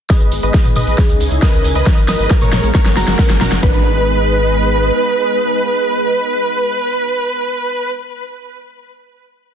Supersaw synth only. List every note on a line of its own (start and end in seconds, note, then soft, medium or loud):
0.10 0.34 B4 medium
0.10 0.34 D#5 loud
0.43 0.67 B4 medium
0.43 0.67 D#5 medium
0.76 1.00 B4 medium
0.76 1.00 D#5 medium
1.42 1.66 B4 medium
1.42 1.66 D#5 medium
1.76 1.99 B4 medium
1.76 1.99 D#5 medium
2.09 2.32 B4 medium
2.09 2.32 D#5 loud
2.42 2.65 A#4 medium
2.42 2.65 C#5 medium
2.75 2.90 A#4 medium
2.75 2.90 C#5 medium
2.97 3.28 F#4 medium
2.97 3.28 A#4 loud
3.41 3.57 F#4 medium
3.41 3.57 A#4 medium
3.63 7.92 B4 loud